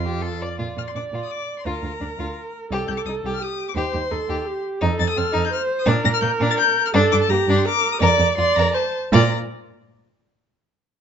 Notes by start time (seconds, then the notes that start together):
Already playing: F2 F4 C6
0.05 G4
0.22 A4
0.42 D5
0.59 A#2 F4 D5
0.77 A#2 F4 F6
0.88 C6
0.95 A#2 D4 D6
1.12 A#2 F4
1.23 D#6
1.31 D6
1.59 C6
1.66 D2 F4 A#4 A#5
1.83 D2 F4
2.01 D2 D4
2.18 D2 F4
2.71 C2 G4 A4
2.88 C2 G4 G6
2.97 D6
3.05 C2 D#4 D#6
3.23 C2 G4
3.34 F6
3.40 G4 D#6
3.69 D6
3.75 D#2 G4 C5 C6
3.93 D#2 G4
4.11 D#2 D#4 A4
4.29 D#2 G4
4.47 G4
4.81 F2 D#4 A4
4.98 F2 D#4 A6
5.09 D#6
5.16 F2 C4 F6
5.32 F2 D#4
5.45 G6
5.52 C5 F6
5.79 D#6
5.86 A#2 D4 A#4
6.04 A#2 D4 A#6
6.14 F6
6.22 A#2 A#3 G6
6.40 A#2 D4
6.51 A6
6.59 G6
6.86 F6
6.94 G2 D4 A4
7.12 G2 D4 D6
7.22 A5
7.29 G2 A#3 G4 A#5
7.47 G2 D4
7.57 C6
7.65 A#4 D6
7.92 D#6
8.01 F2 A#4 D5 D6
8.19 F2 A#4
8.37 F2 F4 D5 C6
8.56 F2 A#4 A#5
8.74 C5 A5
9.12 A#2 F4 D5 A#5